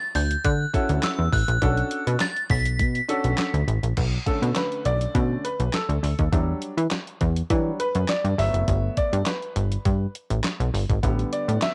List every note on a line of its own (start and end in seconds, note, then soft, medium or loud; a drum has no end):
0.15 0.36 D2 medium
0.15 0.45 G6 medium
0.15 open hi-hat medium
0.31 closed hi-hat medium
0.44 0.66 D3 loud
0.44 0.99 F#6 medium
0.44 kick loud
0.44 closed hi-hat medium
0.73 1.16 C#4 medium
0.73 1.16 E4 medium
0.73 1.16 F#4 medium
0.73 1.16 A4 medium
0.73 kick medium
0.73 closed hi-hat medium
0.89 0.99 D2 medium
0.89 closed hi-hat soft
1.03 1.31 E6 medium
1.03 snare loud
1.03 clap loud
1.03 closed hi-hat medium
1.19 1.29 E2 medium
1.32 1.44 A1 medium
1.32 2.24 F#6 medium
1.32 kick medium
1.32 open hi-hat medium
1.48 1.58 A#1 medium
1.48 closed hi-hat soft
1.62 1.83 B1 loud
1.62 2.17 C#4 medium
1.62 2.17 D4 medium
1.62 2.18 F#4 medium
1.62 2.18 A4 medium
1.62 kick loud
1.62 closed hi-hat medium
1.78 closed hi-hat soft
1.91 closed hi-hat medium
2.07 2.17 B2 loud
2.07 closed hi-hat medium
2.20 2.34 A6 loud
2.20 snare loud
2.20 clap medium
2.20 closed hi-hat medium
2.37 closed hi-hat soft
2.50 2.81 B1 medium
2.50 3.64 B6 loud
2.50 kick loud
2.50 open hi-hat medium
2.66 closed hi-hat medium
2.80 3.01 B2 loud
2.80 kick loud
2.80 closed hi-hat loud
2.95 closed hi-hat soft
3.09 3.51 C#4 medium
3.09 3.51 D4 medium
3.09 3.51 F#4 medium
3.09 3.51 A4 medium
3.09 closed hi-hat medium
3.24 3.35 B1 medium
3.24 closed hi-hat medium
3.38 snare loud
3.38 clap medium
3.38 closed hi-hat medium
3.54 3.64 D2 medium
3.54 closed hi-hat soft
3.68 3.79 A1 medium
3.68 closed hi-hat medium
3.83 3.93 A#1 medium
3.83 closed hi-hat medium
3.97 4.18 B1 loud
3.97 kick loud
3.97 closed hi-hat medium
3.97 crash medium
4.26 5.11 D3 medium
4.26 5.11 A3 medium
4.26 5.11 C#4 medium
4.26 4.57 A4 medium
4.26 kick medium
4.26 closed hi-hat medium
4.42 4.52 B2 loud
4.42 closed hi-hat medium
4.56 4.87 B4 medium
4.56 snare loud
4.56 clap medium
4.56 closed hi-hat medium
4.72 closed hi-hat soft
4.85 5.07 B1 loud
4.85 5.46 D5 loud
4.85 closed hi-hat medium
5.01 closed hi-hat medium
5.14 5.36 B2 loud
5.14 5.41 D3 medium
5.14 5.41 A3 soft
5.14 5.42 C#4 medium
5.14 kick loud
5.14 closed hi-hat medium
5.44 5.75 B4 medium
5.44 closed hi-hat medium
5.60 5.70 B1 loud
5.60 closed hi-hat soft
5.73 6.58 A4 medium
5.73 snare loud
5.73 clap medium
5.73 closed hi-hat medium
5.89 5.99 D2 medium
5.89 closed hi-hat soft
6.03 6.14 D2 medium
6.03 open hi-hat medium
6.19 6.29 D#2 medium
6.19 kick medium
6.19 closed hi-hat soft
6.32 6.54 E2 loud
6.32 6.72 F#3 medium
6.32 6.72 G3 medium
6.32 6.73 D4 medium
6.32 kick loud
6.32 closed hi-hat medium
6.62 closed hi-hat medium
6.77 6.87 E3 loud
6.77 closed hi-hat medium
6.91 snare loud
6.91 clap loud
6.91 closed hi-hat medium
7.07 closed hi-hat soft
7.21 7.42 E2 loud
7.21 kick medium
7.21 closed hi-hat medium
7.36 closed hi-hat soft
7.50 7.71 E3 loud
7.50 7.77 F#3 medium
7.50 7.77 G3 soft
7.50 7.77 D4 medium
7.50 kick loud
7.50 closed hi-hat medium
7.80 8.10 B4 loud
7.80 closed hi-hat medium
7.95 8.05 F#2 loud
7.95 closed hi-hat soft
8.08 8.39 D5 medium
8.08 snare loud
8.08 clap medium
8.08 closed hi-hat medium
8.24 8.34 G2 medium
8.24 closed hi-hat soft
8.38 8.50 G1 loud
8.38 9.23 F#3 medium
8.38 9.23 A3 medium
8.38 9.23 B3 medium
8.38 8.99 E5 loud
8.38 open hi-hat medium
8.54 8.64 F#1 medium
8.54 closed hi-hat medium
8.68 8.89 G1 loud
8.68 kick loud
8.68 closed hi-hat medium
8.97 9.28 D5 medium
8.97 kick medium
8.97 closed hi-hat medium
9.13 9.23 G2 loud
9.13 closed hi-hat medium
9.26 10.11 B4 medium
9.26 snare loud
9.26 clap loud
9.26 closed hi-hat medium
9.42 closed hi-hat soft
9.56 9.77 G1 loud
9.56 closed hi-hat medium
9.72 closed hi-hat medium
9.85 10.07 G2 loud
9.85 kick loud
9.85 closed hi-hat medium
10.15 closed hi-hat medium
10.30 10.40 A1 medium
10.30 closed hi-hat soft
10.44 snare loud
10.44 clap loud
10.44 closed hi-hat medium
10.60 10.70 B1 loud
10.60 closed hi-hat soft
10.74 10.85 G1 loud
10.74 open hi-hat medium
10.90 10.99 G#1 loud
10.90 kick medium
10.90 closed hi-hat soft
11.03 11.25 A1 loud
11.03 11.74 D3 medium
11.03 11.74 G3 medium
11.03 11.74 B3 medium
11.03 kick loud
11.03 closed hi-hat medium
11.19 closed hi-hat soft
11.33 11.63 D5 medium
11.33 closed hi-hat medium
11.48 11.58 A2 medium
11.48 closed hi-hat medium
11.62 11.69 E5 medium
11.62 snare loud
11.62 clap medium
11.62 closed hi-hat medium